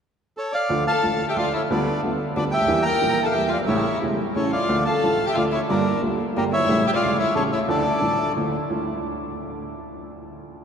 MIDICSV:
0, 0, Header, 1, 4, 480
1, 0, Start_track
1, 0, Key_signature, -1, "minor"
1, 0, Tempo, 333704
1, 992, Time_signature, 3, 2, 24, 8
1, 15310, End_track
2, 0, Start_track
2, 0, Title_t, "Bandoneon"
2, 0, Program_c, 0, 23
2, 537, Note_on_c, 0, 69, 58
2, 561, Note_on_c, 0, 73, 71
2, 748, Note_off_c, 0, 69, 0
2, 752, Note_on_c, 0, 74, 61
2, 781, Note_on_c, 0, 77, 79
2, 782, Note_off_c, 0, 73, 0
2, 1201, Note_off_c, 0, 74, 0
2, 1228, Note_off_c, 0, 77, 0
2, 1250, Note_on_c, 0, 77, 76
2, 1258, Note_on_c, 0, 81, 88
2, 1805, Note_off_c, 0, 77, 0
2, 1809, Note_off_c, 0, 81, 0
2, 1864, Note_on_c, 0, 79, 73
2, 1870, Note_on_c, 0, 76, 56
2, 1967, Note_off_c, 0, 76, 0
2, 1974, Note_off_c, 0, 79, 0
2, 1990, Note_on_c, 0, 74, 61
2, 1991, Note_on_c, 0, 77, 76
2, 2197, Note_off_c, 0, 74, 0
2, 2198, Note_off_c, 0, 77, 0
2, 2224, Note_on_c, 0, 76, 68
2, 2239, Note_on_c, 0, 73, 52
2, 2325, Note_off_c, 0, 76, 0
2, 2337, Note_off_c, 0, 73, 0
2, 2458, Note_on_c, 0, 74, 67
2, 2467, Note_on_c, 0, 71, 51
2, 2889, Note_off_c, 0, 74, 0
2, 2894, Note_off_c, 0, 71, 0
2, 3408, Note_on_c, 0, 74, 79
2, 3425, Note_on_c, 0, 71, 58
2, 3510, Note_off_c, 0, 74, 0
2, 3523, Note_off_c, 0, 71, 0
2, 3615, Note_on_c, 0, 79, 94
2, 3649, Note_on_c, 0, 76, 65
2, 4064, Note_on_c, 0, 82, 103
2, 4077, Note_off_c, 0, 76, 0
2, 4089, Note_off_c, 0, 79, 0
2, 4110, Note_on_c, 0, 79, 79
2, 4631, Note_off_c, 0, 82, 0
2, 4647, Note_on_c, 0, 81, 76
2, 4656, Note_off_c, 0, 79, 0
2, 4690, Note_on_c, 0, 77, 66
2, 4778, Note_off_c, 0, 81, 0
2, 4778, Note_on_c, 0, 79, 86
2, 4801, Note_off_c, 0, 77, 0
2, 4830, Note_on_c, 0, 76, 70
2, 5026, Note_on_c, 0, 77, 76
2, 5040, Note_off_c, 0, 79, 0
2, 5042, Note_off_c, 0, 76, 0
2, 5076, Note_on_c, 0, 74, 56
2, 5139, Note_off_c, 0, 77, 0
2, 5177, Note_off_c, 0, 74, 0
2, 5269, Note_on_c, 0, 76, 70
2, 5298, Note_on_c, 0, 73, 49
2, 5726, Note_off_c, 0, 76, 0
2, 5741, Note_off_c, 0, 73, 0
2, 6276, Note_on_c, 0, 73, 68
2, 6280, Note_on_c, 0, 69, 60
2, 6493, Note_off_c, 0, 73, 0
2, 6494, Note_off_c, 0, 69, 0
2, 6508, Note_on_c, 0, 77, 78
2, 6520, Note_on_c, 0, 74, 58
2, 6954, Note_off_c, 0, 77, 0
2, 6961, Note_off_c, 0, 74, 0
2, 6976, Note_on_c, 0, 81, 88
2, 7007, Note_on_c, 0, 77, 76
2, 7558, Note_off_c, 0, 77, 0
2, 7577, Note_on_c, 0, 79, 78
2, 7602, Note_off_c, 0, 81, 0
2, 7611, Note_on_c, 0, 76, 61
2, 7697, Note_on_c, 0, 77, 83
2, 7706, Note_off_c, 0, 79, 0
2, 7712, Note_off_c, 0, 76, 0
2, 7742, Note_on_c, 0, 74, 56
2, 7808, Note_off_c, 0, 77, 0
2, 7843, Note_off_c, 0, 74, 0
2, 7941, Note_on_c, 0, 76, 70
2, 7973, Note_on_c, 0, 73, 58
2, 8051, Note_off_c, 0, 76, 0
2, 8075, Note_off_c, 0, 73, 0
2, 8180, Note_on_c, 0, 74, 70
2, 8208, Note_on_c, 0, 70, 51
2, 8629, Note_off_c, 0, 74, 0
2, 8644, Note_off_c, 0, 70, 0
2, 9167, Note_on_c, 0, 67, 59
2, 9168, Note_on_c, 0, 70, 74
2, 9269, Note_off_c, 0, 67, 0
2, 9270, Note_off_c, 0, 70, 0
2, 9396, Note_on_c, 0, 76, 95
2, 9397, Note_on_c, 0, 73, 72
2, 9831, Note_off_c, 0, 73, 0
2, 9869, Note_off_c, 0, 76, 0
2, 9891, Note_on_c, 0, 76, 68
2, 9897, Note_on_c, 0, 79, 94
2, 9936, Note_off_c, 0, 76, 0
2, 9941, Note_off_c, 0, 79, 0
2, 10000, Note_on_c, 0, 74, 69
2, 10010, Note_on_c, 0, 77, 82
2, 10318, Note_off_c, 0, 74, 0
2, 10323, Note_off_c, 0, 77, 0
2, 10346, Note_on_c, 0, 73, 61
2, 10350, Note_on_c, 0, 76, 73
2, 10558, Note_off_c, 0, 73, 0
2, 10561, Note_off_c, 0, 76, 0
2, 10575, Note_on_c, 0, 69, 65
2, 10589, Note_on_c, 0, 73, 85
2, 10680, Note_off_c, 0, 69, 0
2, 10691, Note_off_c, 0, 73, 0
2, 10817, Note_on_c, 0, 73, 62
2, 10824, Note_on_c, 0, 76, 74
2, 10921, Note_off_c, 0, 73, 0
2, 10927, Note_off_c, 0, 76, 0
2, 11068, Note_on_c, 0, 69, 54
2, 11078, Note_on_c, 0, 74, 76
2, 11967, Note_off_c, 0, 69, 0
2, 11972, Note_off_c, 0, 74, 0
2, 15310, End_track
3, 0, Start_track
3, 0, Title_t, "Violin"
3, 0, Program_c, 1, 40
3, 1275, Note_on_c, 1, 69, 76
3, 1818, Note_off_c, 1, 69, 0
3, 1849, Note_on_c, 1, 67, 65
3, 1955, Note_off_c, 1, 67, 0
3, 1970, Note_on_c, 1, 65, 71
3, 2187, Note_off_c, 1, 65, 0
3, 2204, Note_on_c, 1, 64, 62
3, 2310, Note_off_c, 1, 64, 0
3, 2429, Note_on_c, 1, 62, 52
3, 2874, Note_off_c, 1, 62, 0
3, 3399, Note_on_c, 1, 62, 68
3, 3503, Note_off_c, 1, 62, 0
3, 3619, Note_on_c, 1, 67, 75
3, 4060, Note_off_c, 1, 67, 0
3, 4082, Note_on_c, 1, 70, 87
3, 4640, Note_off_c, 1, 70, 0
3, 4655, Note_on_c, 1, 69, 72
3, 4775, Note_off_c, 1, 69, 0
3, 4784, Note_on_c, 1, 67, 73
3, 5006, Note_off_c, 1, 67, 0
3, 5014, Note_on_c, 1, 65, 65
3, 5129, Note_off_c, 1, 65, 0
3, 5258, Note_on_c, 1, 64, 58
3, 5720, Note_off_c, 1, 64, 0
3, 6258, Note_on_c, 1, 61, 61
3, 6483, Note_off_c, 1, 61, 0
3, 6489, Note_on_c, 1, 65, 71
3, 6944, Note_off_c, 1, 65, 0
3, 6969, Note_on_c, 1, 69, 79
3, 7537, Note_off_c, 1, 69, 0
3, 7572, Note_on_c, 1, 67, 71
3, 7676, Note_off_c, 1, 67, 0
3, 7685, Note_on_c, 1, 65, 65
3, 7798, Note_off_c, 1, 65, 0
3, 7930, Note_on_c, 1, 64, 65
3, 8042, Note_off_c, 1, 64, 0
3, 8185, Note_on_c, 1, 62, 54
3, 8632, Note_off_c, 1, 62, 0
3, 9160, Note_on_c, 1, 58, 74
3, 9264, Note_off_c, 1, 58, 0
3, 9384, Note_on_c, 1, 64, 84
3, 9823, Note_off_c, 1, 64, 0
3, 9879, Note_on_c, 1, 67, 90
3, 9927, Note_off_c, 1, 67, 0
3, 9979, Note_on_c, 1, 65, 73
3, 10306, Note_off_c, 1, 65, 0
3, 10346, Note_on_c, 1, 64, 73
3, 10558, Note_off_c, 1, 64, 0
3, 10595, Note_on_c, 1, 61, 71
3, 10696, Note_off_c, 1, 61, 0
3, 10840, Note_on_c, 1, 64, 66
3, 10939, Note_off_c, 1, 64, 0
3, 11068, Note_on_c, 1, 62, 56
3, 11967, Note_off_c, 1, 62, 0
3, 15310, End_track
4, 0, Start_track
4, 0, Title_t, "Upright piano"
4, 0, Program_c, 2, 0
4, 998, Note_on_c, 2, 50, 73
4, 1001, Note_on_c, 2, 53, 50
4, 1002, Note_on_c, 2, 38, 66
4, 1006, Note_on_c, 2, 57, 54
4, 1007, Note_on_c, 2, 65, 60
4, 1200, Note_off_c, 2, 38, 0
4, 1200, Note_off_c, 2, 53, 0
4, 1201, Note_off_c, 2, 50, 0
4, 1202, Note_off_c, 2, 57, 0
4, 1203, Note_off_c, 2, 65, 0
4, 1484, Note_on_c, 2, 50, 38
4, 1485, Note_on_c, 2, 53, 37
4, 1487, Note_on_c, 2, 45, 45
4, 1487, Note_on_c, 2, 65, 43
4, 1488, Note_on_c, 2, 33, 47
4, 1491, Note_on_c, 2, 57, 38
4, 1684, Note_off_c, 2, 50, 0
4, 1684, Note_off_c, 2, 53, 0
4, 1685, Note_off_c, 2, 45, 0
4, 1685, Note_off_c, 2, 65, 0
4, 1686, Note_off_c, 2, 33, 0
4, 1687, Note_off_c, 2, 57, 0
4, 1962, Note_on_c, 2, 53, 39
4, 1965, Note_on_c, 2, 38, 50
4, 1966, Note_on_c, 2, 50, 50
4, 1966, Note_on_c, 2, 57, 41
4, 1969, Note_on_c, 2, 65, 48
4, 2161, Note_off_c, 2, 53, 0
4, 2162, Note_off_c, 2, 38, 0
4, 2163, Note_off_c, 2, 50, 0
4, 2163, Note_off_c, 2, 57, 0
4, 2164, Note_off_c, 2, 65, 0
4, 2448, Note_on_c, 2, 59, 58
4, 2451, Note_on_c, 2, 50, 72
4, 2452, Note_on_c, 2, 55, 53
4, 2457, Note_on_c, 2, 38, 78
4, 2461, Note_on_c, 2, 65, 71
4, 2641, Note_off_c, 2, 59, 0
4, 2643, Note_off_c, 2, 55, 0
4, 2645, Note_off_c, 2, 50, 0
4, 2646, Note_off_c, 2, 38, 0
4, 2648, Note_off_c, 2, 65, 0
4, 2926, Note_on_c, 2, 38, 46
4, 2926, Note_on_c, 2, 50, 52
4, 2931, Note_on_c, 2, 55, 34
4, 2938, Note_on_c, 2, 59, 40
4, 2938, Note_on_c, 2, 65, 45
4, 3117, Note_off_c, 2, 38, 0
4, 3120, Note_off_c, 2, 55, 0
4, 3123, Note_off_c, 2, 50, 0
4, 3123, Note_off_c, 2, 59, 0
4, 3123, Note_off_c, 2, 65, 0
4, 3394, Note_on_c, 2, 50, 50
4, 3402, Note_on_c, 2, 38, 47
4, 3402, Note_on_c, 2, 55, 39
4, 3404, Note_on_c, 2, 59, 40
4, 3406, Note_on_c, 2, 65, 48
4, 3593, Note_off_c, 2, 38, 0
4, 3593, Note_off_c, 2, 55, 0
4, 3594, Note_off_c, 2, 59, 0
4, 3595, Note_off_c, 2, 65, 0
4, 3597, Note_off_c, 2, 50, 0
4, 3696, Note_on_c, 2, 37, 46
4, 3748, Note_off_c, 2, 37, 0
4, 3755, Note_on_c, 2, 38, 52
4, 3807, Note_off_c, 2, 38, 0
4, 3817, Note_on_c, 2, 39, 62
4, 3855, Note_on_c, 2, 52, 80
4, 3859, Note_on_c, 2, 40, 80
4, 3859, Note_on_c, 2, 55, 59
4, 3862, Note_on_c, 2, 58, 56
4, 3863, Note_on_c, 2, 67, 71
4, 3867, Note_off_c, 2, 39, 0
4, 4058, Note_off_c, 2, 40, 0
4, 4058, Note_off_c, 2, 52, 0
4, 4058, Note_off_c, 2, 55, 0
4, 4059, Note_off_c, 2, 58, 0
4, 4060, Note_off_c, 2, 67, 0
4, 4339, Note_on_c, 2, 52, 39
4, 4343, Note_on_c, 2, 46, 50
4, 4347, Note_on_c, 2, 55, 36
4, 4351, Note_on_c, 2, 58, 38
4, 4353, Note_on_c, 2, 34, 47
4, 4353, Note_on_c, 2, 67, 46
4, 4535, Note_off_c, 2, 52, 0
4, 4537, Note_off_c, 2, 46, 0
4, 4539, Note_off_c, 2, 55, 0
4, 4542, Note_off_c, 2, 34, 0
4, 4542, Note_off_c, 2, 58, 0
4, 4543, Note_off_c, 2, 67, 0
4, 4791, Note_on_c, 2, 52, 45
4, 4797, Note_on_c, 2, 67, 46
4, 4798, Note_on_c, 2, 40, 49
4, 4798, Note_on_c, 2, 55, 37
4, 4804, Note_on_c, 2, 58, 41
4, 5004, Note_off_c, 2, 40, 0
4, 5004, Note_off_c, 2, 55, 0
4, 5004, Note_off_c, 2, 67, 0
4, 5007, Note_off_c, 2, 52, 0
4, 5007, Note_off_c, 2, 58, 0
4, 5115, Note_on_c, 2, 30, 42
4, 5171, Note_off_c, 2, 30, 0
4, 5174, Note_on_c, 2, 31, 53
4, 5230, Note_on_c, 2, 32, 64
4, 5231, Note_off_c, 2, 31, 0
4, 5288, Note_off_c, 2, 32, 0
4, 5289, Note_on_c, 2, 49, 60
4, 5290, Note_on_c, 2, 45, 72
4, 5291, Note_on_c, 2, 55, 56
4, 5294, Note_on_c, 2, 33, 76
4, 5295, Note_on_c, 2, 64, 61
4, 5297, Note_on_c, 2, 57, 56
4, 5489, Note_off_c, 2, 49, 0
4, 5490, Note_off_c, 2, 45, 0
4, 5491, Note_off_c, 2, 55, 0
4, 5492, Note_off_c, 2, 33, 0
4, 5493, Note_off_c, 2, 64, 0
4, 5494, Note_off_c, 2, 57, 0
4, 5778, Note_on_c, 2, 55, 36
4, 5783, Note_on_c, 2, 57, 38
4, 5789, Note_on_c, 2, 49, 40
4, 5792, Note_on_c, 2, 40, 47
4, 5793, Note_on_c, 2, 28, 47
4, 5793, Note_on_c, 2, 64, 49
4, 5978, Note_off_c, 2, 55, 0
4, 5980, Note_off_c, 2, 57, 0
4, 5983, Note_off_c, 2, 49, 0
4, 5984, Note_off_c, 2, 40, 0
4, 5985, Note_off_c, 2, 28, 0
4, 5985, Note_off_c, 2, 64, 0
4, 6262, Note_on_c, 2, 57, 39
4, 6264, Note_on_c, 2, 33, 48
4, 6268, Note_on_c, 2, 49, 41
4, 6269, Note_on_c, 2, 55, 33
4, 6270, Note_on_c, 2, 45, 46
4, 6280, Note_on_c, 2, 64, 45
4, 6463, Note_off_c, 2, 57, 0
4, 6464, Note_off_c, 2, 33, 0
4, 6466, Note_off_c, 2, 49, 0
4, 6467, Note_off_c, 2, 45, 0
4, 6467, Note_off_c, 2, 55, 0
4, 6472, Note_off_c, 2, 64, 0
4, 6744, Note_on_c, 2, 53, 54
4, 6747, Note_on_c, 2, 38, 68
4, 6748, Note_on_c, 2, 50, 74
4, 6757, Note_on_c, 2, 65, 63
4, 6758, Note_on_c, 2, 57, 54
4, 6946, Note_off_c, 2, 53, 0
4, 6947, Note_off_c, 2, 38, 0
4, 6952, Note_off_c, 2, 50, 0
4, 6952, Note_off_c, 2, 65, 0
4, 6953, Note_off_c, 2, 57, 0
4, 7237, Note_on_c, 2, 53, 35
4, 7244, Note_on_c, 2, 45, 49
4, 7246, Note_on_c, 2, 33, 47
4, 7249, Note_on_c, 2, 50, 40
4, 7249, Note_on_c, 2, 57, 37
4, 7252, Note_on_c, 2, 65, 48
4, 7434, Note_off_c, 2, 53, 0
4, 7437, Note_off_c, 2, 45, 0
4, 7438, Note_off_c, 2, 33, 0
4, 7440, Note_off_c, 2, 50, 0
4, 7440, Note_off_c, 2, 57, 0
4, 7441, Note_off_c, 2, 65, 0
4, 7723, Note_on_c, 2, 50, 53
4, 7724, Note_on_c, 2, 53, 41
4, 7732, Note_on_c, 2, 38, 51
4, 7734, Note_on_c, 2, 65, 43
4, 7737, Note_on_c, 2, 57, 43
4, 7918, Note_off_c, 2, 53, 0
4, 7922, Note_off_c, 2, 38, 0
4, 7922, Note_off_c, 2, 50, 0
4, 7923, Note_off_c, 2, 65, 0
4, 7924, Note_off_c, 2, 57, 0
4, 8184, Note_on_c, 2, 50, 58
4, 8191, Note_on_c, 2, 55, 52
4, 8193, Note_on_c, 2, 65, 63
4, 8194, Note_on_c, 2, 58, 54
4, 8195, Note_on_c, 2, 31, 74
4, 8203, Note_on_c, 2, 43, 72
4, 8387, Note_off_c, 2, 50, 0
4, 8390, Note_off_c, 2, 55, 0
4, 8391, Note_off_c, 2, 65, 0
4, 8392, Note_off_c, 2, 31, 0
4, 8392, Note_off_c, 2, 58, 0
4, 8397, Note_off_c, 2, 43, 0
4, 8664, Note_on_c, 2, 55, 44
4, 8665, Note_on_c, 2, 50, 50
4, 8668, Note_on_c, 2, 38, 54
4, 8669, Note_on_c, 2, 58, 35
4, 8671, Note_on_c, 2, 65, 46
4, 8867, Note_off_c, 2, 55, 0
4, 8868, Note_off_c, 2, 38, 0
4, 8869, Note_off_c, 2, 58, 0
4, 8870, Note_off_c, 2, 50, 0
4, 8870, Note_off_c, 2, 65, 0
4, 9150, Note_on_c, 2, 50, 43
4, 9152, Note_on_c, 2, 58, 43
4, 9153, Note_on_c, 2, 31, 54
4, 9157, Note_on_c, 2, 65, 56
4, 9160, Note_on_c, 2, 55, 40
4, 9162, Note_on_c, 2, 43, 54
4, 9347, Note_off_c, 2, 50, 0
4, 9349, Note_off_c, 2, 31, 0
4, 9349, Note_off_c, 2, 58, 0
4, 9351, Note_off_c, 2, 65, 0
4, 9353, Note_off_c, 2, 55, 0
4, 9354, Note_off_c, 2, 43, 0
4, 9462, Note_on_c, 2, 30, 47
4, 9511, Note_off_c, 2, 30, 0
4, 9525, Note_on_c, 2, 31, 51
4, 9560, Note_on_c, 2, 32, 65
4, 9572, Note_off_c, 2, 31, 0
4, 9616, Note_on_c, 2, 33, 75
4, 9620, Note_off_c, 2, 32, 0
4, 9620, Note_on_c, 2, 49, 57
4, 9620, Note_on_c, 2, 57, 59
4, 9622, Note_on_c, 2, 45, 73
4, 9626, Note_on_c, 2, 55, 60
4, 9631, Note_on_c, 2, 64, 70
4, 9817, Note_off_c, 2, 33, 0
4, 9818, Note_off_c, 2, 57, 0
4, 9819, Note_off_c, 2, 49, 0
4, 9820, Note_off_c, 2, 45, 0
4, 9821, Note_off_c, 2, 55, 0
4, 9824, Note_off_c, 2, 64, 0
4, 10104, Note_on_c, 2, 55, 37
4, 10105, Note_on_c, 2, 49, 42
4, 10105, Note_on_c, 2, 57, 35
4, 10107, Note_on_c, 2, 64, 45
4, 10109, Note_on_c, 2, 40, 54
4, 10110, Note_on_c, 2, 28, 52
4, 10297, Note_off_c, 2, 49, 0
4, 10297, Note_off_c, 2, 55, 0
4, 10297, Note_off_c, 2, 57, 0
4, 10298, Note_off_c, 2, 64, 0
4, 10299, Note_off_c, 2, 40, 0
4, 10300, Note_off_c, 2, 28, 0
4, 10580, Note_on_c, 2, 45, 53
4, 10581, Note_on_c, 2, 49, 47
4, 10582, Note_on_c, 2, 55, 42
4, 10590, Note_on_c, 2, 33, 50
4, 10591, Note_on_c, 2, 57, 38
4, 10594, Note_on_c, 2, 64, 47
4, 10773, Note_off_c, 2, 45, 0
4, 10773, Note_off_c, 2, 49, 0
4, 10773, Note_off_c, 2, 55, 0
4, 10778, Note_off_c, 2, 33, 0
4, 10778, Note_off_c, 2, 57, 0
4, 10780, Note_off_c, 2, 64, 0
4, 11046, Note_on_c, 2, 50, 73
4, 11054, Note_on_c, 2, 57, 59
4, 11058, Note_on_c, 2, 38, 76
4, 11058, Note_on_c, 2, 53, 55
4, 11059, Note_on_c, 2, 64, 65
4, 11247, Note_off_c, 2, 50, 0
4, 11250, Note_off_c, 2, 57, 0
4, 11252, Note_off_c, 2, 38, 0
4, 11252, Note_off_c, 2, 53, 0
4, 11252, Note_off_c, 2, 64, 0
4, 11519, Note_on_c, 2, 45, 47
4, 11525, Note_on_c, 2, 50, 36
4, 11525, Note_on_c, 2, 53, 38
4, 11525, Note_on_c, 2, 57, 38
4, 11528, Note_on_c, 2, 33, 49
4, 11529, Note_on_c, 2, 64, 46
4, 11725, Note_off_c, 2, 45, 0
4, 11728, Note_off_c, 2, 50, 0
4, 11728, Note_off_c, 2, 53, 0
4, 11728, Note_off_c, 2, 57, 0
4, 11729, Note_off_c, 2, 33, 0
4, 11730, Note_off_c, 2, 64, 0
4, 12030, Note_on_c, 2, 53, 39
4, 12031, Note_on_c, 2, 50, 50
4, 12036, Note_on_c, 2, 57, 36
4, 12038, Note_on_c, 2, 38, 53
4, 12042, Note_on_c, 2, 64, 44
4, 12228, Note_off_c, 2, 53, 0
4, 12229, Note_off_c, 2, 50, 0
4, 12231, Note_off_c, 2, 57, 0
4, 12232, Note_off_c, 2, 38, 0
4, 12234, Note_off_c, 2, 64, 0
4, 12501, Note_on_c, 2, 65, 48
4, 12507, Note_on_c, 2, 64, 42
4, 12510, Note_on_c, 2, 62, 37
4, 12516, Note_on_c, 2, 38, 45
4, 15310, Note_off_c, 2, 38, 0
4, 15310, Note_off_c, 2, 62, 0
4, 15310, Note_off_c, 2, 64, 0
4, 15310, Note_off_c, 2, 65, 0
4, 15310, End_track
0, 0, End_of_file